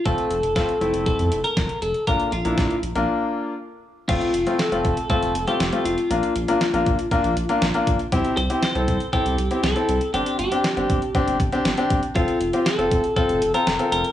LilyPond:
<<
  \new Staff \with { instrumentName = "Clean electric guitar" } { \time 4/4 \key f \major \tempo 4 = 119 a'4 a'4 a'8. bes'8. a'8 | bes'8 f'4 r2 r8 | f'4 a'4 a'8. g'8. f'8~ | f'2.~ f'8 r8 |
r8 c''8 c''4 g'4 a'4 | g'8 g'2. r8 | f'4 a'4 a'8. bes'8. bes'8 | }
  \new Staff \with { instrumentName = "Grand piano" } { \time 4/4 \key f \major <a c' f'>8 r8 <a c' f'>16 r16 <a c' e'>4 r4. | <bes d' f'>8 r16 <bes d' e'>8 r8 <bes d' f'>4 r4 r16 | <a c' f'>8 r16 <a c' f'>16 r16 <a c' f'>8 r16 <a c' f'>8 r16 <a c' f'>16 r16 <a c' f'>8 r16 | <bes d' f'>8 r16 <bes d' f'>16 r16 <bes d' f'>8 r16 <bes d' f'>8 r16 <bes d' f'>16 r16 <bes d' f'>8 r16 |
<c' e' g'>8 r16 <c' e' g'>16 r16 <c' e' a'>8 r16 <c' e' a'>8 r16 <c' e' g'>16 r16 <c' e' a'>8 r16 | <c' d' g'>8 r16 <c' d' g'>16 r16 <c' d' g'>8 r16 <c' d' g'>8 r16 <c' d' g'>16 r16 <c' d' g'>8 r16 | <c' f' a'>8 r16 <c' f' g'>16 r16 <c' f' a'>8 r16 <c' f' a'>8 r16 <c' f' a'>16 r16 <c' f' a'>8 r16 | }
  \new Staff \with { instrumentName = "Analog synth bass" } { \clef bass \time 4/4 \key f \major f,,16 r16 f,,16 f,,16 f,,16 r16 f,,16 f,,16 f,,16 f,16 f,,16 r16 f,,16 r16 f,,16 r16 | bes,,16 r16 bes,,16 bes,,16 bes,,16 r16 bes,,16 bes,,16 r2 | f,,16 r16 f,,16 r8 f,,16 f,,16 r8 f,,16 f,,16 r16 f,,16 r16 f,,16 r16 | bes,,16 r16 bes,,16 r8 bes,,16 bes,,16 r8 bes,,16 bes,,16 r16 bes,,16 r16 bes,,16 r16 |
c,16 r16 c,16 r8 c,16 c,16 r8 c,16 c,16 r16 c,16 r16 c,16 r16 | g,,16 r16 g,,16 r8 g,,16 g,,16 r8 g,,16 g,,16 r16 g,,16 r16 g,,16 r16 | f,,16 r16 f,,16 r8 f,,16 f,,16 r8 f,,16 f,,16 r16 f,,16 r16 f,,16 r16 | }
  \new DrumStaff \with { instrumentName = "Drums" } \drummode { \time 4/4 <hh bd>16 hh16 hh16 hh16 <hh bd sn>16 hh16 hh16 hh16 <hh bd>16 hh16 hh16 hh16 <hh bd sn>16 hh16 hh16 hh16 | <hh bd>16 hh16 hh16 hh16 <hh bd sn>16 hh16 hh16 hh16 r4 r4 | <cymc hh bd>16 hh16 hh16 hh16 <hh sn>16 hh16 <hh bd>16 hh16 <hh bd>16 hh16 hh16 hh16 <hh sn>16 hh16 hh16 hh16 | hh16 hh16 hh16 hh16 <hh sn>16 hh16 <hh bd>16 hh16 <hh bd>16 hh16 hh16 hh16 <hh sn>16 hh16 <hh bd>16 hh16 |
<hh bd>16 hh16 hh16 hh16 <hh sn>16 hh16 <hh bd>16 hh16 <hh bd>16 hh16 hh16 hh16 <hh sn>16 hh16 hh16 hh16 | hh16 hh16 hh16 hh16 <hh sn>16 hh16 <hh bd>16 hh16 <hh bd>16 hh16 <hh bd>16 hh16 <hh sn>16 hh16 <hh bd>16 hh16 | <hh bd>16 hh16 hh16 hh16 <hh sn>16 hh16 <hh bd>16 hh16 <hh bd>16 hh16 hh16 hh16 <hh sn>16 hh16 hh16 hh16 | }
>>